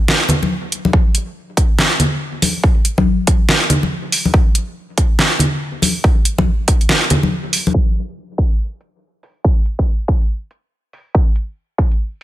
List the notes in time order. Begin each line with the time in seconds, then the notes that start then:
0.08 snare
0.29 closed hi-hat, low conga
0.43 high conga
0.72 closed hi-hat
0.85 high conga
0.93 kick
1.15 closed hi-hat
1.57 kick, closed hi-hat
1.79 snare
2.00 closed hi-hat, low conga
2.42 open hi-hat, high conga
2.64 kick
2.85 closed hi-hat
2.98 kick, high conga
3.27 kick, closed hi-hat
3.49 snare
3.70 closed hi-hat, low conga
3.83 high conga
4.12 open hi-hat
4.25 high conga
4.34 kick
4.55 closed hi-hat
4.98 kick, closed hi-hat
5.19 snare
5.39 closed hi-hat, low conga
5.82 open hi-hat, high conga
6.04 kick
6.25 closed hi-hat
6.38 kick, high conga
6.68 kick, closed hi-hat
6.81 closed hi-hat
6.89 snare
7.10 closed hi-hat, low conga
7.23 high conga
7.53 open hi-hat
7.67 high conga
7.74 kick
7.96 closed hi-hat
8.38 kick, closed hi-hat
8.51 closed hi-hat
8.81 closed hi-hat
9.23 open hi-hat
9.44 kick
9.66 closed hi-hat
9.79 kick
10.08 kick, closed hi-hat
10.21 closed hi-hat
10.51 closed hi-hat
10.93 open hi-hat
11.15 kick
11.36 closed hi-hat
11.78 kick, closed hi-hat
11.92 closed hi-hat